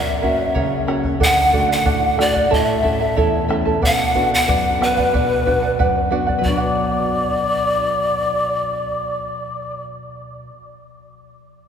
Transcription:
Already playing: F#2 A#4 C#5 E5 F#5
0.21 A#3 C#4 F#4 A#4 C#5 F#5, bombo low
0.37 C#5 F#5
0.54 C#3 A#4 C#5 F#5, bombo low
0.87 A#3 C#4 F#4 A#4 C#5 F#5, bombo rim
1.03 C#5 F#5, bombo low
1.20 D3 A4 D5 F#5, bombo low
1.52 A3 D4 F#4 A4 D5 F#5, bombo low
1.68 D5 F#5
1.85 A2 A4 D5 F#5, bombo low
2.18 A3 D4 F#4 A4 D5 F#5, bombo rim
2.35 D5 F#5, bombo low
2.50 A2 E4 A4 C#5 D#5 E5 A5, bombo low
2.66 E5
2.83 A3 C#4 E4 A4 E5 A5, bombo low
3.01 E4 A4 A5
3.16 E2 E4 A4 C#5 E5 A5, bombo low
3.49 A3 C#4 E4 A4 E5 A5, bombo rim
3.65 E4 A4 A5, bombo low
3.82 B2 B4 D5 F#5, bombo low
4.15 B3 D4 F#4 B4 D5 F#5, bombo low
4.32 D5 F#5
4.48 F#2 B4 D5 F#5, bombo low
4.80 B3 D4 F#4 B4 D5 F#5, bombo rim
4.97 D5 F#5, bombo low
5.13 B2 B4 D5 F#5, bombo low
5.46 B3 D4 F#4 B4 D5 F#5, bombo low
5.62 D5 F#5
5.79 F#2 B4 D5 F#5, bombo low
6.11 B3 D4 F#4 B4 D5 F#5
6.27 D5 F#5, bombo low
6.38 B2 F#3 B4
6.44 B3 D5 D6, bombo low
6.49 D4 F#4 D5
6.57 F#5

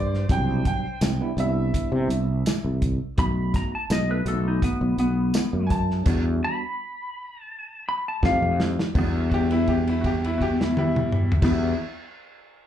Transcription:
Already playing: G2 C5 D5
0.14 snare
0.29 C2 B2 F#3 G3 D4 G5, kick, closed hi-hat
0.65 G5, kick, closed hi-hat
1.01 C2, snare, closed hi-hat, tambourine
1.21 G3 B3 D4 E4
1.37 C2 G3 B3 D4 E4 E5, closed hi-hat
1.74 kick, closed hi-hat
1.92 C3
2.08 C2, closed hi-hat
2.46 snare, closed hi-hat, tambourine
2.64 C2
2.82 kick, closed hi-hat
3.17 B1 A3 B3 D#4 F#4 B5, kick, closed hi-hat
3.54 A#5, kick, snare, closed hi-hat
3.75 A5
3.90 B1 D#5, snare, closed hi-hat, tambourine
4.08 A3 B3 D#4 A4 B4
4.25 B1 A3 B3 D#4 F#4 A4, closed hi-hat
4.48 D#4
4.62 B3, kick, closed hi-hat
4.81 B1
4.98 B1 B3, closed hi-hat
5.34 snare, closed hi-hat, tambourine
5.53 F#2
5.67 G#5, kick, closed hi-hat
5.71 A5
5.91 snare
6.05 E2 G3 B3 D4 F#4, kick, closed hi-hat, crash
6.44 B5
7.40 A5
7.89 B5
8.08 A5
8.23 F2 A3 C4 D#4 F4 G4 F5, kick, snare, high tom
8.42 F2, mid tom
8.60 snare
8.79 snare
8.92 E2 G3 B3 D4, kick, crash
8.97 B3 F#4
9.29 F#4, kick, crash
9.34 G4
9.51 E4, crash
9.67 G4, kick, crash
9.87 E4, crash
10.01 F#4, kick, crash
10.06 G4
10.24 E4, crash
10.38 F#4, kick, crash
10.42 G4
10.61 E4, snare
10.77 G3 E4, high tom
10.96 mid tom
11.12 mid tom
11.32 floor tom
11.40 E2 G3 B3 D4, kick, snare, crash
11.44 B3 E4 F#4

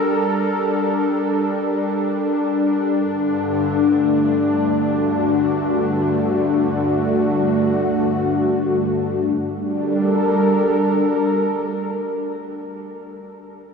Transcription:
Already playing: G3 D4 A4 A#4
3.02 G2
3.08 D3
3.55 A3
4.82 F#4
9.34 G3
9.44 D4
9.57 A4
9.68 A#4

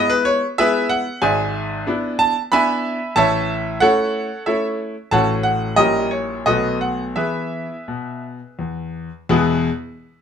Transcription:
Already playing: G#3 B3 E4
0.10 B4
0.25 C#5
0.58 G#3 B3 E4 G#4 B4 E5
0.89 F#5
1.22 G#1 G#2 D5 E5 G#5
1.87 B3 D4 E4
2.19 A5
2.52 B3 D4 E4 E5 G#5 B5
3.16 A1 A2 C#5 E5 A5
3.80 A3 C#4 E4 A4 C#5 F#5
4.46 A3 C#4 E4 A4 C#5 E5
5.11 A1 A2 A3 C#4 F#4 C#5 F#5 A5
5.43 F#5
5.76 A#1 A#2 G3 C#4 E4 G4 A#4 D#5
6.11 C#5
6.46 B1 B2 A3 B3 F#4 A4 B4 D#5
6.81 F#5
7.16 E3 B3 E4 G#4 B4 E5
7.88 B2
8.59 E2
9.29 E2 B2 G#3 B3 E4 G#4

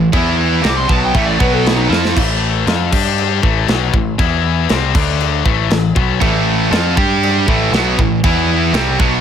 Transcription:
Already playing: A1
0.12 E2 E3 B3 E4, kick, china
0.63 C2 C3 G3 C4, snare, china
0.67 D6
0.77 C6
0.89 B1 B2 F#3 B3 A5, kick
1.03 G5
1.15 A1 A2 E3 A3 E5, kick, china
1.26 D5
1.39 B1 B2 F#3 B3 B4, kick
1.53 A4
1.66 E4, snare, china
1.77 D#4
1.89 F2 F3 C4 E4 F4, snare
2.05 snare
2.15 A1 A2 E3 A3, kick, crash, china
2.67 F2 F3 C4 F4, snare, china
2.92 G2 G3 D4 G4, kick, crash
3.18 china
3.42 A1 A2 E3 A3, kick
3.67 B1 B2 F#3 B3, snare, china
3.93 A1 A2 E3, kick
4.18 E2 E3 B3 E4, kick, china
4.69 C2 C3 G3 C4, snare, china
4.94 D2 D3 A3 D4, kick, crash
5.21 china
5.45 A1 A2 E3 A3, kick
5.70 A1 A2 E3, snare, china
5.95 B1 B2 F#3 B3, kick
6.21 A1 A2 E3 A3, kick, china
6.70 F2 F3 C4 F4, snare, china
6.96 G2 G3 D4 G4, kick
7.23 china
7.48 A1 A2 E3 A3, kick
7.72 B1 B2 F#3 B3, snare, china
7.98 A1 A2 E3, kick
8.24 E2 E3 B3 E4, kick, china
8.73 C2 C3 G3 C4, snare, china
8.99 B1 B2 F#3 B3, kick

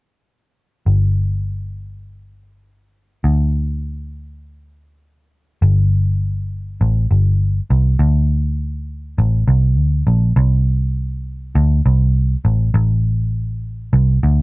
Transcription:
0.86 G1
3.24 D2
5.62 G1
6.81 A1
7.11 G1
7.70 C2
7.99 D2
9.18 A1
9.48 C2
9.77 D2
10.07 A#1
10.36 C2
11.55 D2
11.86 C2
12.45 A1
12.74 A1
13.93 C2
14.23 D2

